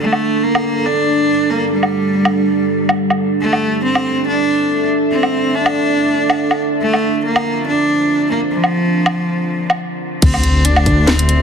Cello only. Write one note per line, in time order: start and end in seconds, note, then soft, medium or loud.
0.01 0.45 A3 medium
0.43 0.88 A#3 medium
0.86 1.52 D4 loud
1.50 1.71 A#3 medium
1.71 2.95 G3 medium
3.41 3.81 A3 medium
3.84 4.24 C4 loud
4.27 4.87 D4 loud
5.12 5.56 C4 loud
5.54 6.61 D4 loud
6.82 7.21 A3 medium
7.25 7.64 A#3 medium
7.67 8.27 D4 loud
8.31 8.40 A#3 medium
8.52 9.76 F3 medium
10.23 10.66 C4 medium
10.65 11.09 D4 loud
11.07 11.42 C4 loud